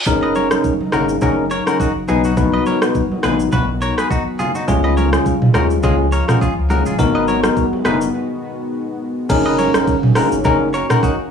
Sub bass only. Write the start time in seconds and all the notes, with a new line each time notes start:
0.06 F#1
0.93 G#1
1.22 F#1
1.95 F#1
2.09 B1
3.24 A#1
3.53 B1
4.68 C#2
5.54 D#2
5.84 C#2
6.57 C#2
6.86 D#1
6.99 G#1
7.85 F#1
9.30 F#1
9.74 F#1
10.32 G#1
10.45 F#1